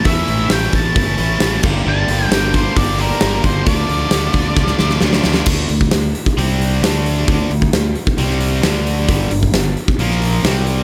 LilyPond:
<<
  \new Staff \with { instrumentName = "Lead electric guitar" } { \time 4/4 \key d \minor \tempo 4 = 133 e''4 g''8 a''2 r8 | a''4 g''8 c''8 d''8 bes'4 c''8 | d''2. r4 | r1 |
r1 | r1 | }
  \new Staff \with { instrumentName = "Overdriven electric guitar" } { \time 4/4 \key d \minor <a, e a cis' e'>8 <a cis' e'>8 <a, e a cis' e'>8 <a cis' e'>8 <e a cis' e'>8 <a, e a cis' e'>8 <e a cis' e'>8 <g, d g bes d' g'>8 | <g, d g bes d' g'>8 <g bes d' g'>8 <g, d g bes d' g'>8 <g bes d' g'>8 <g bes d' g'>8 <g, d g bes d' g'>8 <g bes d' g'>8 <g bes d' g'>8 | <d a d' f'>8 <a d' f'>8 <d a d' f'>8 <a d' f'>8 <d a d' f'>8 <d a d' f'>8 <d a d' f'>8 <a d' f'>8 | <d a d'>8 <d a>8 <d a>8 r8 <c g c'>4 <d a d'>4 |
<d a d'>8 <d a>8 <d a>8 r8 <c g c'>4 <d a d'>4 | <g, d g>8 <g, d>8 <g, d>8 r8 <bes, f bes>4 <c g c'>4 | }
  \new Staff \with { instrumentName = "Overdriven electric guitar" } { \time 4/4 \key d \minor <a, e a cis' e'>4 <e a cis' e'>8 <a cis' e'>4 <a cis' e'>8 <a, e a cis' e'>8 <g, d g bes d'>8 | <g, d g bes d'>4 <d g bes d'>8 <g bes d'>4 <g bes d'>8 <g, d g bes d'>4 | <d f a d'>4 <d f a d'>8 <f a d'>4 <f a d'>8 <d f a d'>4 | <d a d'>8 <d a>8 <d a>8 r8 <c g c'>4 <d a d'>4 |
<d a d'>8 <d a>8 <d a>8 r8 <c g c'>4 <d a d'>4 | <g, d g>8 <g, d>8 <g, d>8 r8 <bes, f bes>4 <c g c'>4 | }
  \new Staff \with { instrumentName = "Fingered electric bass" } { \clef bass \time 4/4 \key d \minor e,8 a,,8 a,,8 a,,8 g,,8 a,,8 a,,8 g,,8 | g,,8 g,,8 g,,4 g,,4 g,,8 g,,8 | d,8 d,8 d,8 d,8 cis,8 d,8 d,8 d,8 | d,8 d,8 d,8 r8 c,4 d,4 |
d,8 d,8 d,8 r8 c,4 d,4 | g,,8 g,,8 g,,8 r8 bes,,4 c,4 | }
  \new DrumStaff \with { instrumentName = "Drums" } \drummode { \time 4/4 <hho bd>8 hho8 <hho sn>8 <hho bd>8 <hho bd>8 hho8 <hho sn>8 <cymc bd>8 | r8 hho8 <hho sn>8 <hho bd>8 <hho bd>8 hho8 <hho sn>16 sn16 <hho bd>8 | <hho bd>8 hho8 <hho sn>8 <hho bd>8 <bd sn>16 sn16 sn16 sn16 sn16 sn16 sn16 sn16 | <cymc bd>8 hho16 bd16 <hho sn>8 hho16 bd16 hho8 hho8 <hho sn>8 hho8 |
<hho bd>8 hho16 bd16 <hho sn>8 hho16 bd16 hho16 sn16 hho8 <hho sn>8 hho8 | <hho bd>8 hho16 bd16 <hho sn>8 hho16 bd16 hho16 sn16 hho8 <hho sn>8 hho8 | }
>>